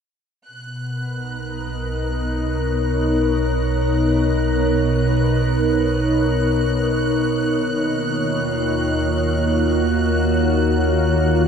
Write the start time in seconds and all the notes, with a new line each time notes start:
0.46 B1 B2 F#6
0.65 B3
0.88 A#4
1.17 D#4
2.22 C#5
7.52 D#2 D#3
7.68 A#3
7.80 F4
9.08 F#4